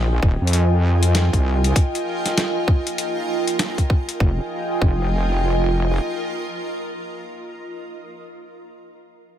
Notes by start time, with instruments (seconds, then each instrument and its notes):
Already playing: wobble bass A#1, analog synth pad F4 D#5 G5 G#5, ambient pad F4 A#4
0.23 wobble bass D#1, kick
0.41 wobble bass F2
0.47 closed hi-hat
0.53 closed hi-hat
0.68 ambient pad D#5
1.03 closed hi-hat
1.15 snare, closed hi-hat
1.33 wobble bass C2, kick, closed hi-hat
1.64 closed hi-hat
1.76 kick, closed hi-hat
1.95 closed hi-hat
2.26 snare, closed hi-hat
2.38 snare, closed hi-hat
2.68 kick
2.87 closed hi-hat
2.98 closed hi-hat
3.48 closed hi-hat
3.59 snare, closed hi-hat
3.78 kick, closed hi-hat
3.90 kick
4.09 closed hi-hat
4.20 wobble bass F1, ambient pad F4, analog synth pad F4 D#5 G5 G#5, kick
4.32 ambient pad A#4
4.42 ambient pad D#5
4.82 wobble bass F1, kick